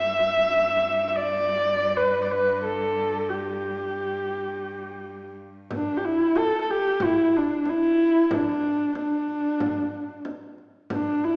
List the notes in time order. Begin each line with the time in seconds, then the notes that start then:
Already playing: G2 E5
0.51 G2
1.08 E5
1.16 D5
1.97 B4
2.24 D5
2.31 B4
2.64 A4
3.30 G4
5.71 frame drum
5.76 D4
5.97 G4
6.04 E4, frame drum
6.36 A4, frame drum
6.61 A4
6.71 G4
7.00 E4, frame drum
7.37 D4
7.65 E4, frame drum
7.98 frame drum
8.31 D4, frame drum
8.63 frame drum
8.95 D4, frame drum
9.28 frame drum
9.60 frame drum
10.25 frame drum
10.58 frame drum
10.90 D4, frame drum
11.23 E4, frame drum